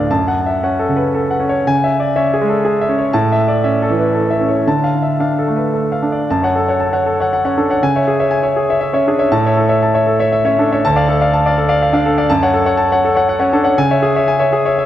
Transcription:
Already playing: D2 A2 D4 A4 B4 D5 E5 F5 A5
0.10 F#2 A5
0.28 F#5
0.46 E5
0.63 C#4 F#5
0.79 A4
0.89 C#3
0.96 B4
1.15 A4
1.31 F#5
1.40 C#4
1.49 C#5
1.67 C#3 G#5
1.84 E5
2.00 D5
2.16 C#4 E5
2.34 G#4
2.41 G#3
2.49 A4
2.65 G#4
2.81 E5
2.89 C#4
2.98 C#5
3.13 A2 A5
3.32 E5
3.48 D5
3.64 C#4 E5
3.82 A4
3.90 E3
3.99 B4
4.15 A4
4.30 E5
4.40 C#4
4.48 C#5
4.67 D3 A5
4.84 F5
5.03 E5
5.20 D4 F5
5.39 A4
5.48 A3
5.56 B4
5.74 A4
5.92 F5
6.03 D4
6.12 D5
6.30 F#2 A5
6.43 C#5 F#5
6.56 A4
6.68 C#5 F#5
6.80 A5
6.93 C#5 F#5
7.06 A4
7.20 C#5 F#5
7.33 F#5
7.45 C#4 C#5 F#5
7.57 D4 A4
7.70 C#5 F#5
7.83 C#3 G#5
7.96 C#5 E5
8.08 G#4
8.20 C#5 E5
8.31 G#5
8.43 C#5 E5
8.57 G#4
8.69 C#5 E5
8.81 E5
8.93 C#4 C#5 E5
9.07 D4 G#4
9.19 C#5 E5
9.32 A2 A5
9.46 C#5 E5
9.57 A4
9.69 C#5 E5
9.83 A5
9.94 C#5 E5
10.07 A4
10.19 C#5 E5
10.32 E5
10.45 C#4 C#5 E5
10.59 D4 A4
10.72 C#5 E5
10.85 D2 A5
10.96 D5 F5
11.09 A4
11.21 D5 F5
11.34 A5
11.46 D5 F5
11.58 A4
11.69 D5 F5
11.83 F5
11.93 D4 D5 F5
12.06 A4
12.18 D5 F5
12.30 F#2 A5
12.42 C#5 F#5
12.54 A4
12.66 C#5 F#5
12.77 A5
12.92 C#5 F#5
13.05 A4
13.15 C#5 F#5
13.29 F#5
13.39 C#4 C#5 F#5
13.53 D4 A4
13.64 C#5 F#5
13.78 C#3 G#5
13.91 C#5 E5
14.03 G#4
14.16 C#5 E5
14.28 G#5
14.39 C#5 E5
14.53 G#4
14.65 C#5 E5
14.78 E5

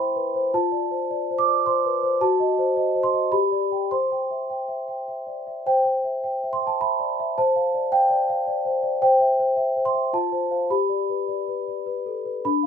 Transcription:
Already playing: E4 C5 E5 G5 B5 C6
0.16 B4
0.35 C5
0.54 F4 A5
0.72 D5
0.91 C5
1.11 D5
1.31 C5
1.39 D6
1.48 D5
1.66 C5 C6
1.85 B4
2.03 C5
2.21 F#4 A5
2.40 D#5
2.58 C5
2.76 D#5
2.95 C5
3.03 C6
3.13 D#5
3.32 G4 B5
3.52 D5
3.71 D5 G5
3.91 C5 C6
4.12 G5
4.31 E5
4.50 G5
4.68 E5
4.88 G5
5.08 E5
5.27 D5
5.47 E5
5.66 C5 G5
5.85 G5
6.04 E5
6.24 G5
6.44 E5
6.53 C6
6.61 G5
6.67 A5
6.81 E5 B5
7.00 D5
7.20 E5
7.38 C5 A5
7.56 F5
7.75 D5
7.92 F5 G5
8.10 D5
8.29 F5
8.47 D5
8.65 C5
8.83 D5
9.02 C5 G5
9.20 E5
9.40 C5
9.57 E5
9.77 C5
9.85 C6
9.94 E5
10.13 F4 A5
10.32 C5
10.51 C5 F5
10.70 G4 B5
10.89 D5
11.09 B4
11.28 D5
11.48 B4
11.68 D5
11.86 B4
12.06 A4
12.25 B4
12.45 D4 B5
12.63 F5

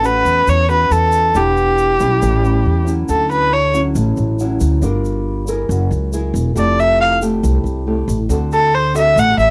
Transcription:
Already playing: A1 A3
0.03 C#4 F#4 B4, shaker
0.25 E2, shaker
0.47 E2 E3 C#5, shaker
0.69 C#4 F#4 B4, shaker
0.91 E2 A4, shaker
1.12 shaker
1.34 E1 E3 B3 D4 G4, shaker
1.57 shaker
1.78 shaker
2.00 B1 G3 C#4 E4, shaker
2.21 A1 A2, shaker
2.43 G3 C#4 E4, shaker
2.66 E2
2.85 F#3 C#4 E4, shaker
3.08 D2 D3 A4, shaker
3.31 B4, shaker
3.53 C#5
3.74 F#3 C#4 E4, shaker
3.95 A1 A2, shaker
4.17 A1, shaker
4.39 F#3 C#4 E4, shaker
4.60 D2, shaker
4.82 G1 G3 D4 F4 A#4, shaker
5.05 shaker
5.48 E4 G#4 A#4, shaker
5.69 F#1 F#3, shaker
5.91 C#2, shaker
6.13 E4 G#4 A#4, shaker
6.34 E1, shaker
6.55 F1 F3 A3 E4 G4 D5, shaker
6.79 E5, shaker
7.01 F5
7.22 A3 E4 G4, shaker
7.42 C2 C3, shaker
7.64 C2, shaker
7.87 A3 E4 G4
8.08 A1, shaker
8.29 D2 D3 C4 F#4 A4, shaker
8.52 A4, shaker
8.75 C5
8.94 C4 F#4 A4 E5, shaker
9.16 A1 A3 F#5, shaker
9.37 A1 E5, shaker

